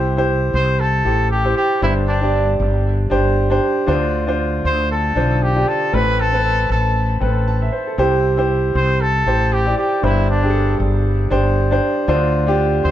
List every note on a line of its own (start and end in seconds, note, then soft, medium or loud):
0.00 0.50 C2 medium
0.00 0.50 C3 medium
0.00 0.17 E4 medium
0.00 0.18 G4 medium
0.00 0.18 C5 medium
0.17 0.83 E4 medium
0.17 0.84 G4 medium
0.17 0.84 C5 medium
0.54 1.02 C2 medium
0.54 0.81 C5 medium
0.80 1.30 A4 medium
1.05 1.53 A1 medium
1.05 1.34 E4 medium
1.05 1.35 G4 medium
1.05 1.35 A4 medium
1.31 1.55 G4 medium
1.44 1.73 E4 medium
1.44 1.74 G4 medium
1.44 1.74 C5 medium
1.57 1.81 G4 medium
1.82 2.56 G1 medium
1.82 2.55 G2 medium
1.82 2.11 D4 medium
1.82 1.94 E4 medium
1.82 2.12 G4 medium
1.82 2.12 C5 medium
2.08 2.56 D4 medium
2.21 2.88 D4 medium
2.21 2.88 G4 medium
2.21 2.89 D5 medium
2.60 3.07 G1 medium
3.10 3.59 G1 medium
3.10 3.40 D4 medium
3.10 3.40 G4 medium
3.10 3.40 C5 medium
3.50 3.79 D4 medium
3.50 3.79 G4 medium
3.50 3.80 C5 medium
3.87 4.61 D2 medium
3.87 4.60 D3 medium
3.87 4.16 D4 medium
3.87 4.17 F4 medium
3.87 4.17 C5 medium
4.27 4.93 D4 medium
4.27 4.94 F4 medium
4.27 4.94 C5 medium
4.65 5.13 D2 medium
4.65 4.89 C5 medium
4.91 5.44 A4 medium
5.15 5.64 B1 medium
5.15 5.45 D4 medium
5.15 5.45 F4 medium
5.15 5.46 C5 medium
5.43 5.69 G4 medium
5.55 5.84 D4 medium
5.55 5.85 F4 medium
5.55 5.85 G4 medium
5.68 5.96 A4 medium
5.93 6.66 A1 medium
5.93 6.66 A2 medium
5.93 6.22 C4 medium
5.93 6.22 A4 medium
5.93 6.23 B4 medium
5.93 6.22 B4 medium
6.20 6.71 A4 medium
6.33 6.99 C4 medium
6.33 6.99 A4 medium
6.33 7.00 B4 medium
6.70 7.18 A1 medium
6.70 7.18 A4 medium
7.20 7.69 A1 medium
7.20 7.50 C4 medium
7.20 7.47 A4 medium
7.20 7.47 B4 medium
7.48 7.95 A5 medium
7.62 7.72 E5 soft
7.73 7.86 C5 medium
7.87 8.11 A4 soft
7.98 8.71 C2 medium
7.98 8.71 C3 medium
7.98 8.27 E4 medium
7.98 8.27 G4 medium
7.98 8.28 C5 medium
8.37 9.04 E4 medium
8.37 9.04 G4 medium
8.37 9.04 C5 medium
8.75 9.23 C2 medium
8.75 9.03 C5 medium
9.01 9.54 A4 medium
9.26 9.74 A1 medium
9.26 9.55 E4 medium
9.26 9.56 G4 medium
9.26 9.56 C5 medium
9.53 9.78 G4 medium
9.65 9.94 E4 medium
9.65 9.95 G4 medium
9.65 9.95 D5 medium
9.78 10.05 G4 medium
10.02 10.76 G1 medium
10.02 10.76 G2 medium
10.02 10.32 D4 medium
10.02 10.29 E4 medium
10.02 10.32 G4 medium
10.02 10.33 C5 medium
10.30 10.77 D4 medium
10.42 11.09 D4 medium
10.42 11.09 G4 medium
10.42 10.49 G#4 soft
10.50 11.13 A4 medium
10.80 11.28 G1 medium
11.30 11.79 G1 medium
11.30 11.60 D4 medium
11.30 11.60 G4 medium
11.30 11.61 C5 medium
11.71 12.00 D4 medium
11.71 12.00 G4 medium
11.71 12.00 C5 medium
12.08 12.81 D2 medium
12.08 12.81 D3 medium
12.08 12.37 D4 medium
12.08 12.37 F4 medium
12.08 12.38 C5 medium
12.47 12.91 D4 medium
12.47 12.91 F4 medium
12.47 12.91 G4 medium
12.85 12.91 D2 medium
12.85 12.91 C5 loud